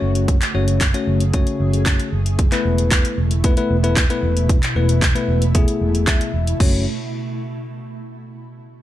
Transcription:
0.00 0.39 F#1 medium
0.00 2.35 C#3 medium
0.00 0.35 A3 medium
0.00 6.56 A3 medium
0.00 0.36 C#4 medium
0.00 0.26 F#4 medium
0.00 0.36 F#4 medium
0.00 0.36 C#5 medium
0.15 closed hi-hat medium
0.28 2.37 G#4 medium
0.28 kick loud
0.28 closed hi-hat medium
0.42 clap medium
0.42 closed hi-hat medium
0.54 0.92 F#1 loud
0.54 0.83 A3 medium
0.54 0.83 C#4 medium
0.54 0.83 F#4 medium
0.54 0.83 C#5 medium
0.68 closed hi-hat medium
0.81 kick loud
0.81 clap loud
0.81 closed hi-hat medium
0.94 1.22 A3 medium
0.94 1.22 C#4 medium
0.94 1.22 F#4 medium
0.94 1.22 C#5 medium
0.94 closed hi-hat medium
1.07 1.44 F#1 medium
1.20 closed hi-hat medium
1.33 2.08 A3 medium
1.33 2.08 C#4 medium
1.33 2.09 F#4 medium
1.33 2.09 C#5 medium
1.33 kick loud
1.33 closed hi-hat medium
1.47 closed hi-hat soft
1.60 1.97 F#1 medium
1.74 closed hi-hat soft
1.86 kick loud
1.86 clap loud
1.86 closed hi-hat medium
2.00 closed hi-hat medium
2.12 2.49 F#1 medium
2.26 closed hi-hat soft
2.39 6.56 B2 medium
2.39 6.56 E4 medium
2.39 kick loud
2.39 closed hi-hat medium
2.52 3.17 A3 medium
2.52 3.18 B3 medium
2.52 3.18 E4 medium
2.52 3.18 B4 loud
2.52 clap medium
2.52 closed hi-hat medium
2.65 3.02 E1 loud
2.78 closed hi-hat medium
2.91 kick loud
2.91 clap loud
2.91 closed hi-hat medium
3.05 closed hi-hat medium
3.18 3.55 E1 medium
3.31 closed hi-hat medium
3.44 3.53 A3 medium
3.44 3.53 B3 medium
3.44 3.54 E4 medium
3.44 3.54 B4 loud
3.44 kick loud
3.44 closed hi-hat medium
3.57 3.76 A3 medium
3.57 3.76 B3 medium
3.57 3.76 E4 medium
3.57 3.76 B4 loud
3.57 closed hi-hat soft
3.70 4.07 E1 medium
3.83 4.02 A3 medium
3.83 4.02 B3 medium
3.83 4.02 E4 medium
3.83 4.02 B4 loud
3.83 closed hi-hat soft
3.97 kick loud
3.97 clap loud
3.97 closed hi-hat medium
4.10 4.57 A3 medium
4.10 4.57 B3 medium
4.10 4.57 E4 medium
4.10 4.57 B4 loud
4.10 closed hi-hat medium
4.23 4.60 E1 medium
4.37 closed hi-hat soft
4.49 kick loud
4.49 closed hi-hat medium
4.63 clap medium
4.63 closed hi-hat medium
4.75 5.13 E1 loud
4.75 5.04 A3 medium
4.75 5.04 B3 medium
4.75 5.04 E4 medium
4.75 5.04 B4 medium
4.89 closed hi-hat medium
5.02 kick loud
5.02 clap loud
5.02 closed hi-hat medium
5.15 5.43 A3 medium
5.15 5.43 B3 medium
5.15 5.43 E4 medium
5.15 5.43 B4 medium
5.15 closed hi-hat soft
5.28 5.65 E1 medium
5.42 closed hi-hat medium
5.54 6.29 A3 medium
5.54 6.29 B3 medium
5.54 6.30 E4 medium
5.54 6.30 G#4 loud
5.54 kick loud
5.54 closed hi-hat medium
5.68 closed hi-hat medium
5.81 6.18 E1 medium
5.95 closed hi-hat soft
6.07 6.56 E5 medium
6.07 kick loud
6.07 clap loud
6.07 closed hi-hat medium
6.21 closed hi-hat medium
6.34 6.52 E1 medium
6.47 closed hi-hat medium
6.60 6.85 F#1 loud
6.60 6.85 A3 medium
6.60 6.85 C#4 medium
6.60 6.85 F#4 medium
6.60 6.84 C#5 medium
6.60 kick loud
6.60 crash medium

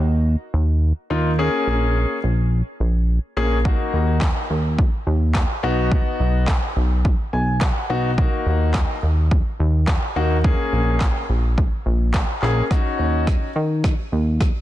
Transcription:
0.00 0.36 D#2 loud
0.54 0.93 D#2 loud
1.10 1.49 D#2 medium
1.10 1.30 A#3 medium
1.10 1.30 D#4 medium
1.10 1.30 F4 medium
1.38 2.17 A#3 medium
1.38 2.17 C#4 medium
1.38 2.17 G#4 medium
1.67 2.06 A#1 medium
2.24 2.62 A#1 loud
2.80 3.19 A#1 loud
3.37 3.76 A#1 medium
3.37 3.56 A#3 medium
3.37 3.56 C#4 medium
3.37 3.56 G#4 medium
3.65 4.43 A#3 medium
3.65 4.43 D#4 medium
3.65 4.43 F#4 medium
3.65 kick loud
3.93 4.32 D#2 medium
4.21 kick loud
4.21 snare medium
4.21 clap loud
4.50 4.89 D#2 loud
4.79 kick loud
5.07 5.45 D#2 loud
5.35 kick loud
5.35 snare medium
5.35 clap loud
5.63 6.02 B1 medium
5.63 6.54 B3 medium
5.63 6.54 D#4 medium
5.63 6.54 F#4 loud
5.92 kick loud
6.20 6.59 B1 medium
6.48 kick loud
6.48 snare medium
6.48 clap loud
6.76 7.15 B1 loud
7.05 kick loud
7.33 7.72 B1 loud
7.33 7.59 G#5 medium
7.61 8.14 F#5 medium
7.61 kick loud
7.61 snare medium
7.61 clap loud
7.89 8.28 B1 medium
7.89 8.09 B3 medium
7.89 8.09 D#4 medium
7.89 8.09 F#4 medium
8.18 8.96 A#3 medium
8.18 8.96 D#4 medium
8.18 8.96 F#4 medium
8.18 kick loud
8.46 8.85 D#2 medium
8.74 kick loud
8.74 snare medium
8.74 clap loud
9.03 9.42 D#2 loud
9.31 kick loud
9.60 9.98 D#2 loud
9.88 kick loud
9.88 snare medium
9.88 clap loud
10.16 10.55 D#2 medium
10.16 10.35 A#3 medium
10.16 10.36 D#4 medium
10.16 10.36 F#4 loud
10.44 11.22 A#3 medium
10.44 11.22 C#4 medium
10.44 11.22 G#4 medium
10.44 kick loud
10.73 11.11 A#1 medium
11.01 kick loud
11.01 snare medium
11.01 clap loud
11.29 11.68 A#1 loud
11.58 kick loud
11.86 12.25 A#1 loud
12.14 kick loud
12.14 snare medium
12.14 clap loud
12.42 12.62 A#1 medium
12.42 12.62 A#3 medium
12.42 12.62 C#4 medium
12.42 12.62 G#4 medium
12.42 clap medium
12.71 13.49 C#4 medium
12.71 13.49 D#4 medium
12.71 13.49 F#4 medium
12.71 kick loud
12.71 snare medium
12.99 13.38 D#2 medium
13.27 kick loud
13.27 snare medium
13.56 13.94 D#3 medium
13.84 kick loud
13.84 snare medium
14.12 14.51 D#2 medium
14.41 kick loud
14.41 snare medium

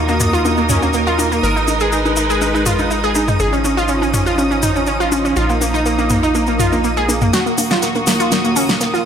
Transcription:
0.00 1.41 D#2 medium
0.00 1.41 D#3 medium
0.00 5.33 D#4 medium
0.00 1.41 F#4 medium
0.00 3.36 A#4 medium
0.00 7.32 D#6 medium
0.08 0.16 A#3 medium
0.08 high conga medium
0.08 cabasa soft
0.20 0.28 A#3 medium
0.20 mid tom medium
0.20 cabasa medium
0.33 0.40 F4 medium
0.33 cabasa soft
0.45 0.53 A#3 medium
0.45 high conga medium
0.45 cabasa medium
0.57 0.65 A#3 medium
0.57 cabasa soft
0.69 0.77 C#4 medium
0.69 mid tom medium
0.69 cabasa medium
0.82 0.90 A#3 medium
0.82 high conga medium
0.82 cabasa soft
0.93 1.02 A#3 medium
0.93 cabasa soft
1.07 1.14 F4 medium
1.07 cabasa soft
1.19 1.27 A#3 medium
1.19 high conga medium
1.19 cabasa medium
1.32 1.39 A#3 medium
1.32 cabasa soft
1.43 3.38 G#1 medium
1.43 3.38 G#3 medium
1.43 1.51 A#4 medium
1.43 3.38 B4 medium
1.43 cabasa soft
1.56 1.63 D#4 medium
1.56 cabasa soft
1.68 1.76 D#4 medium
1.68 high conga medium
1.68 cabasa medium
1.80 1.88 G#4 medium
1.80 cabasa soft
1.92 2.00 D#4 medium
1.92 cabasa soft
2.05 2.12 D#4 medium
2.05 high conga medium
2.05 cabasa soft
2.16 2.25 D#4 medium
2.16 cabasa medium
2.30 2.37 G#4 medium
2.30 cabasa soft
2.41 2.50 D#4 medium
2.41 high conga medium
2.41 cabasa soft
2.54 2.62 D#4 medium
2.54 cabasa soft
2.66 2.74 F4 loud
2.66 mid tom medium
2.66 cabasa medium
2.79 2.86 D#4 medium
2.79 high conga medium
2.79 cabasa soft
2.91 2.99 D#4 medium
2.91 cabasa soft
3.04 3.11 G#4 medium
3.04 cabasa soft
3.15 3.23 D#4 medium
3.15 high conga medium
3.15 cabasa medium
3.28 3.35 D#4 medium
3.28 mid tom medium
3.28 cabasa soft
3.40 5.34 G#1 medium
3.40 7.30 F3 medium
3.40 5.35 C#4 medium
3.40 3.48 G#4 medium
3.40 cabasa medium
3.53 3.60 C#4 medium
3.53 cabasa soft
3.64 3.72 C#4 medium
3.64 high conga medium
3.64 cabasa medium
3.77 3.85 F4 medium
3.77 cabasa soft
3.88 3.97 C#4 medium
3.88 cabasa soft
4.02 4.09 C#4 medium
4.02 high conga medium
4.02 cabasa soft
4.14 4.22 C#4 medium
4.14 mid tom medium
4.14 cabasa medium
4.26 4.34 F4 medium
4.26 cabasa soft
4.38 4.46 C#4 medium
4.38 high conga medium
4.38 cabasa soft
4.51 4.58 C#4 medium
4.51 cabasa soft
4.63 4.71 D#4 loud
4.63 mid tom medium
4.63 cabasa medium
4.76 4.83 C#4 medium
4.76 high conga medium
4.76 cabasa soft
4.87 4.95 C#4 medium
4.87 cabasa medium
5.00 5.07 F4 medium
5.00 cabasa soft
5.12 5.20 C#4 medium
5.12 high conga medium
5.12 cabasa medium
5.25 5.32 C#4 medium
5.25 cabasa soft
5.36 7.31 A#1 medium
5.36 7.31 A#3 medium
5.36 7.31 D#4 medium
5.36 5.45 F4 medium
5.36 cabasa soft
5.50 5.57 A#3 medium
5.50 cabasa soft
5.61 5.69 A#3 medium
5.61 high conga medium
5.61 cabasa medium
5.74 5.81 D#4 medium
5.74 cabasa soft
5.86 5.94 A#3 medium
5.86 cabasa soft
5.99 6.06 A#3 medium
5.99 high conga medium
5.99 cabasa soft
6.10 6.18 A#3 medium
6.10 mid tom medium
6.10 cabasa medium
6.23 6.30 D#4 medium
6.23 cabasa soft
6.35 6.43 A#3 medium
6.35 high conga medium
6.35 cabasa soft
6.47 6.55 A#3 medium
6.47 cabasa soft
6.59 6.67 F4 loud
6.59 mid tom medium
6.59 cabasa medium
6.72 6.80 A#3 medium
6.72 high conga medium
6.72 cabasa soft
6.84 6.92 A#3 medium
6.84 cabasa soft
6.97 7.04 G#4 loud
6.97 cabasa soft
7.09 7.17 A#3 medium
7.09 high conga medium
7.09 cabasa medium
7.21 7.29 A#3 medium
7.21 mid tom medium
7.21 cabasa soft
7.33 9.05 D#2 medium
7.33 9.05 D#3 medium
7.33 9.05 A#3 medium
7.33 9.05 F#4 medium
7.33 7.41 F#4 loud
7.33 9.05 D#6 medium
7.33 snare soft
7.33 closed hi-hat medium
7.33 cabasa medium
7.46 7.53 A#3 medium
7.46 cabasa soft
7.58 7.66 A#3 medium
7.58 closed hi-hat medium
7.58 open hi-hat loud
7.58 high conga medium
7.58 cabasa medium
7.70 7.78 F4 loud
7.70 snare soft
7.70 closed hi-hat medium
7.70 cabasa soft
7.82 7.90 A#3 medium
7.82 snare loud
7.82 closed hi-hat medium
7.82 cabasa soft
7.95 8.03 A#3 medium
7.95 closed hi-hat soft
7.95 high conga medium
7.95 cabasa soft
8.07 8.15 A#3 medium
8.07 snare soft
8.07 closed hi-hat medium
8.07 open hi-hat medium
8.07 cabasa medium
8.20 8.27 F4 medium
8.20 snare soft
8.20 closed hi-hat medium
8.20 cabasa soft
8.32 8.40 A#3 medium
8.32 snare soft
8.32 closed hi-hat medium
8.32 high conga medium
8.32 cabasa soft
8.44 8.52 A#3 medium
8.44 closed hi-hat soft
8.44 cabasa soft
8.56 8.64 C#4 medium
8.56 closed hi-hat medium
8.56 open hi-hat loud
8.56 cabasa medium
8.69 8.76 A#3 medium
8.69 snare soft
8.69 closed hi-hat medium
8.69 high conga medium
8.69 cabasa soft
8.81 8.89 A#3 medium
8.81 snare loud
8.81 closed hi-hat medium
8.81 cabasa soft
8.94 9.01 F4 medium
8.94 snare soft
8.94 cabasa soft

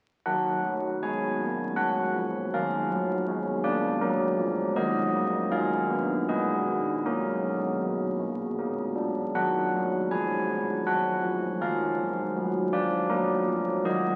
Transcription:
0.26 0.57 D#3 soft
0.26 2.50 A#4 soft
0.26 1.00 F#5 medium
0.63 0.94 F#3 soft
1.03 1.33 G#3 soft
1.03 1.76 G#5 medium
1.40 1.71 A#3 soft
1.76 2.07 F#3 soft
1.76 2.50 F#5 medium
2.15 2.45 F3 soft
2.54 2.84 D#3 medium
2.54 4.00 A#4 soft
2.54 3.61 F5 medium
2.90 3.20 F#3 medium
3.28 3.58 G#3 medium
3.64 3.94 A#3 medium
3.64 4.00 D5 medium
4.01 4.32 F#3 medium
4.01 4.75 A#4 medium
4.38 4.70 F3 medium
4.76 5.08 D#3 medium
4.76 6.25 A#4 soft
4.76 5.50 D#5 medium
5.13 5.45 A#3 medium
5.52 5.83 D#4 medium
5.52 6.26 F5 medium
5.89 6.21 B3 medium
6.28 6.60 G#3 medium
6.28 7.02 B4 soft
6.28 7.03 D#5 medium
6.67 6.98 B3 soft
7.05 7.37 A#3 soft
7.05 8.55 F#4 soft
7.05 8.58 A#4 medium
7.43 7.74 G#3 soft
7.80 8.12 F#3 soft
8.19 8.51 G#3 soft
8.58 8.90 A#3 soft
8.58 9.32 A#4 soft
8.95 9.27 D4 soft
9.35 9.66 D#3 soft
9.35 11.57 A#4 soft
9.35 10.08 F#5 medium
9.73 10.04 F#3 soft
10.11 10.42 F3 soft
10.11 10.83 G#5 medium
10.49 10.79 F#3 soft
10.86 11.16 D#3 soft
10.86 11.58 F#5 medium
11.22 11.53 F3 soft
11.61 11.91 D#3 medium
11.61 13.09 A#4 soft
11.61 12.69 F5 medium
11.98 12.28 F3 medium
12.36 12.66 F#3 medium
12.73 13.03 F3 medium
12.73 13.09 D5 medium
13.10 13.41 F#3 medium
13.10 13.84 A#4 medium
13.48 13.79 F3 medium
13.85 14.16 D#3 medium
13.85 14.16 A#4 soft
13.85 14.16 D#5 medium

